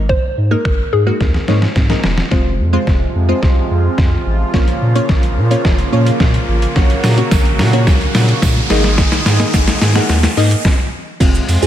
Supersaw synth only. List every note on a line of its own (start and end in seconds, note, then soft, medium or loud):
2.31 4.52 C3 medium
2.31 4.52 F3 medium
2.31 4.52 G#3 medium
2.31 6.72 F4 medium
4.54 6.74 C#3 medium
4.54 6.74 F3 medium
4.54 10.61 A#3 medium
6.76 8.69 C#3 medium
6.76 8.69 F#3 medium
6.76 8.69 F#4 medium
8.70 10.63 D#3 medium
8.70 10.63 G#3 medium
8.70 10.63 G#4 medium
11.20 11.67 C3 medium
11.20 11.67 F3 medium
11.20 11.67 G#3 medium
11.20 11.67 F4 medium